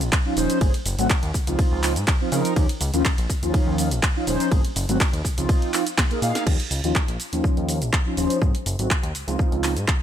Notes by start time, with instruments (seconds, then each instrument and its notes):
0.01 analog synth bass A#1, closed hi-hat, shaker
0.12 kick, clap, ride, shaker
0.25 analog polysynth F3 C#4 D#4 F4
0.36 analog synth bass D#1, analog polysynth F3 C#4 D#4 C5, open hi-hat, shaker
0.50 closed hi-hat, shaker
0.61 analog synth bass G#1, analog polysynth F#3 A3 C4 G#4, kick, ride, shaker
0.74 closed hi-hat
0.86 analog synth bass F#1, open hi-hat, shaker
0.98 analog synth bass G#1, analog polysynth F#3 A3 C4 F#4, closed hi-hat, shaker
1.10 kick, clap, ride, shaker
1.23 analog synth bass D#2, closed hi-hat
1.34 analog synth bass C#2, kick, open hi-hat, shaker
1.47 analog synth bass C#2, analog polysynth F3 C4 D#4 F4, closed hi-hat, shaker
1.59 kick, ride, shaker
1.72 analog synth bass C#2
1.83 analog polysynth F3 C4 D#4 F4, clap, open hi-hat, shaker
1.96 analog synth bass G#2, closed hi-hat, shaker
2.07 kick, clap, ride, shaker
2.20 analog polysynth F3 C4 D#4 F4
2.32 analog synth bass C#3, analog polysynth F3 C4 D#4 A#4, open hi-hat, shaker
2.45 closed hi-hat, shaker
2.56 analog synth bass D#2, analog polysynth F3 C#4 D#4 G4, kick, ride, shaker
2.69 closed hi-hat
2.81 analog synth bass C#2, open hi-hat, shaker
2.93 analog synth bass D#2, analog polysynth F3 C#4 D#4 F4, closed hi-hat, shaker
3.05 kick, clap, ride, shaker
3.18 analog synth bass A#1, closed hi-hat
3.30 kick, open hi-hat, shaker
3.42 analog synth bass D#2, analog polysynth F3 C#4 D#4 F4, closed hi-hat, shaker
3.54 analog synth bass D#2, kick, ride, shaker
3.67 analog synth bass D#2
3.78 analog polysynth F3 C#4 D#4 F4, open hi-hat, shaker
3.91 analog synth bass A#1, closed hi-hat, shaker
4.03 kick, clap, ride, shaker
4.15 analog polysynth F3 C#4 D#4 F4
4.27 analog synth bass D#1, analog polysynth F3 C#4 D#4 C5, open hi-hat, shaker
4.40 closed hi-hat, shaker
4.51 analog synth bass G#1, analog polysynth F#3 A3 C4 G#4, kick, ride, shaker
4.65 closed hi-hat
4.76 analog synth bass F#1, open hi-hat, shaker
4.89 analog synth bass G#1, analog polysynth F#3 A3 C4 F#4, closed hi-hat, shaker
5.00 kick, clap, ride, shaker
5.13 analog synth bass D#2, closed hi-hat
5.25 analog synth bass C#2, kick, open hi-hat, shaker
5.37 analog synth bass C#2, analog polysynth F3 C4 D#4 F4, closed hi-hat, shaker
5.49 kick, ride, shaker
5.62 closed hi-hat
5.73 analog polysynth F3 C4 D#4 F4, clap, open hi-hat, shaker
5.87 closed hi-hat, shaker
5.98 kick, snare, clap, ride, shaker
6.10 analog polysynth A#3 D#4 G#4 A#4, closed hi-hat
6.22 analog synth bass A#2, analog polysynth A#3 D#4 G#4 F5, open hi-hat, shaker
6.35 snare, closed hi-hat, shaker
6.46 analog synth bass D#2, analog polysynth F3 C#4 D#4 G4, kick, crash, shaker
6.60 closed hi-hat
6.71 analog synth bass C#2, open hi-hat, shaker
6.84 analog synth bass D#2, analog polysynth F3 C#4 D#4 F4, closed hi-hat, shaker
6.95 kick, clap, shaker
7.08 analog synth bass A#1, closed hi-hat
7.20 open hi-hat, shaker
7.32 analog synth bass D#2, analog polysynth F3 C#4 D#4 F4, closed hi-hat, shaker
7.44 analog synth bass D#2, kick, shaker
7.57 analog synth bass D#2, closed hi-hat
7.68 analog polysynth F3 C#4 D#4 F4, open hi-hat, shaker
7.81 analog synth bass A#1, closed hi-hat, shaker
7.93 kick, clap, shaker
8.05 analog polysynth F3 C#4 D#4 F4
8.17 analog synth bass D#1, analog polysynth F3 C#4 D#4 C5, open hi-hat, shaker
8.30 closed hi-hat, shaker
8.41 analog synth bass G#1, analog polysynth F#3 A3 C4 G#4, kick, shaker
8.55 closed hi-hat
8.66 analog synth bass F#1, open hi-hat, shaker
8.79 analog synth bass G#1, analog polysynth F#3 A3 C4 F#4, closed hi-hat, shaker
8.90 kick, clap, shaker
9.03 analog synth bass D#2, closed hi-hat
9.15 analog synth bass C#2, open hi-hat, shaker
9.27 analog synth bass C#2, analog polysynth F3 C4 D#4 F4, closed hi-hat, shaker
9.39 kick, shaker
9.52 analog synth bass C#2, closed hi-hat
9.63 analog polysynth F3 C4 D#4 F4, clap, open hi-hat, shaker
9.76 analog synth bass G#2, closed hi-hat, shaker
9.88 kick, clap, shaker